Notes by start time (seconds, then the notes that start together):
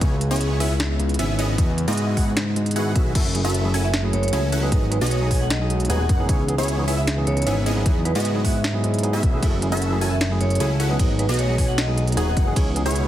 0.01 C#2 C#3 B3 C#4 E4 G#4 C#5, kick, closed hi-hat
0.21 closed hi-hat
0.31 B3 C#4 E4 G#4 C#5, closed hi-hat
0.36 closed hi-hat
0.41 closed hi-hat
0.60 B3 C#4 E4 G#4 E5, open hi-hat
0.80 snare, closed hi-hat
0.99 C#2, closed hi-hat
1.09 closed hi-hat
1.14 closed hi-hat
1.19 G#1 B3 C#4 E4 G#4 E5, closed hi-hat
1.39 B3 C#4 E4 G#4 D#5, closed hi-hat
1.58 E2 D#3 G#3 B3 E4 F#4 G#4 D#5, kick, closed hi-hat
1.78 closed hi-hat
1.88 G#2 B3 E4 F#4 G#4 D#5, closed hi-hat
1.93 closed hi-hat
1.97 closed hi-hat
2.17 B3 E4 F#4 G#4 F#5, kick, open hi-hat
2.37 snare, closed hi-hat
2.56 G#2, closed hi-hat
2.66 closed hi-hat
2.71 closed hi-hat
2.76 B3 E4 F#4 G#4 F#5, closed hi-hat
2.96 B1 B3 E4 F#4 G#4 E5, kick, closed hi-hat
3.15 F#1 E3 A3 C#4 E4 F#4 A4 E5, kick, closed hi-hat, crash
3.34 F#3 A3 C#4 E4 G#4, closed hi-hat
3.44 C#4 E4 F#4 A4 E5, closed hi-hat
3.50 closed hi-hat
3.54 closed hi-hat
3.63 F#3 A3 C#4 E4 G#4
3.74 C#4 E4 F#4 A4 G#5, open hi-hat
3.84 E5
3.94 snare, closed hi-hat
4.02 F#3 A3 C#4 E4 G#4
4.13 F#1 C#5, closed hi-hat
4.23 C#5, closed hi-hat
4.28 F#3, closed hi-hat
4.32 C#2 A3 C#4 E4 F#4 G#4 A4 G#5, closed hi-hat
4.52 C#4 E4 F#4 A4 F#5, closed hi-hat
4.61 F#3 G#3 B3 D#4 G#4 B4
4.72 G#1 B2 G#3 B3 D#4 F#4 G#4 D#5, kick, closed hi-hat
4.91 F#3 G#3 B3 D#4 G#4 B4, closed hi-hat
5.01 B1 B3 D#4 F#4 G#4 B4 D#5, closed hi-hat
5.06 closed hi-hat
5.11 C#5, closed hi-hat
5.20 F#3 G#3 B3 D#4 G#4
5.31 B3 D#4 F#4 G#4 G#5, kick, open hi-hat
5.41 F#5
5.50 D#5, snare, closed hi-hat
5.59 F#3 G#3 B3 D#4 G#4 D#5
5.70 closed hi-hat
5.80 closed hi-hat
5.85 F#3, closed hi-hat
5.89 D#1 G#3 B3 D#4 F#4 G#4 F#5 G#5, closed hi-hat
6.09 F#1 B3 D#4 F#4 G#4 F#5, kick, closed hi-hat
6.18 E3 B3 C#4 D#4 G#4
6.29 C#2 C#3 B3 C#4 E4 G#4 C#5, kick, closed hi-hat
6.48 E3 B3 C#4 D#4 G#4, closed hi-hat
6.58 B3 C#4 E4 G#4 C#5, closed hi-hat
6.63 closed hi-hat
6.68 closed hi-hat
6.77 E3 B3 C#4 D#4 G#4
6.88 B3 C#4 E4 G#4 E5, open hi-hat
6.98 E5
7.07 snare, closed hi-hat
7.16 E3 B3 C#4 D#4 G#4
7.27 C#2 C#5, closed hi-hat
7.37 C#5, closed hi-hat
7.42 E3, closed hi-hat
7.46 G#1 B3 C#4 D#4 E4 G#4 E5, closed hi-hat
7.66 B3 C#4 E4 G#4 D#5, closed hi-hat
7.75 F#3 B3 D#4 E4 G#4 B4
7.86 E2 D#3 G#3 B3 E4 F#4 G#4 D#5, kick, closed hi-hat
8.04 F#3 B3 D#4 E4 G#4 B4, closed hi-hat
8.15 G#2 B3 E4 F#4 G#4 B4 D#5, closed hi-hat
8.20 closed hi-hat
8.25 closed hi-hat
8.34 F#3 B3 D#4 E4 G#4
8.45 B3 E4 F#4 G#4 E5 F#5, kick, open hi-hat
8.64 snare, closed hi-hat
8.73 F#3 B3 D#4 E4 G#4
8.84 G#2, closed hi-hat
8.94 closed hi-hat
8.99 F#3, closed hi-hat
9.03 B3 D#4 E4 G#4, closed hi-hat
9.13 B3 E4 F#4 G#4 E5
9.23 B1, kick, closed hi-hat
9.32 F#3 A3 C#4 E4 G#4
9.42 F#1 E3 A3 C#4 E4 F#4 A4 E5, kick, closed hi-hat, ride
9.61 F#3 A3 C#4 E4 G#4, closed hi-hat
9.72 C#4 E4 F#4 A4 E5, closed hi-hat
9.77 closed hi-hat
9.82 closed hi-hat
9.91 F#3 A3 C#4 E4 G#4
10.01 C#4 E4 F#4 A4 G#5, open hi-hat
10.11 E5
10.21 snare, closed hi-hat, ride
10.30 F#3 A3 C#4 E4 G#4
10.41 F#1 C#5, closed hi-hat
10.50 C#5, closed hi-hat
10.55 F#3, closed hi-hat
10.60 C#2 A3 C#4 E4 F#4 G#4 A4 G#5, closed hi-hat
10.80 C#4 E4 F#4 A4 F#5, closed hi-hat
10.89 F#3 G#3 B3 D#4 G#4 B4
10.99 G#1 B2 G#3 B3 D#4 F#4 G#4 D#5, kick, closed hi-hat, ride
11.18 F#3 G#3 B3 D#4 G#4 B4, closed hi-hat
11.29 B1 B3 D#4 F#4 G#4 B4 D#5, closed hi-hat
11.34 closed hi-hat
11.39 C#5, closed hi-hat
11.47 F#3 G#3 B3 D#4 G#4
11.58 B3 D#4 F#4 G#4 G#5, kick, open hi-hat
11.68 F#5
11.78 D#5, snare, closed hi-hat, ride
11.87 F#3 G#3 B3 D#4 G#4 D#5
11.98 closed hi-hat
12.07 closed hi-hat
12.12 F#3, closed hi-hat
12.16 D#1 G#3 B3 D#4 F#4 G#4 F#5 G#5, closed hi-hat
12.37 F#1 B3 D#4 F#4 G#4 F#5, kick, closed hi-hat
12.45 E3 B3 C#4 D#4 G#4
12.56 C#2 C#3 B3 C#4 E4 G#4 C#5, kick, closed hi-hat, ride
12.75 E3 B3 C#4 D#4 G#4, closed hi-hat
12.86 B3 C#4 E4 G#4 C#5, closed hi-hat
12.91 closed hi-hat
12.96 closed hi-hat
13.04 E3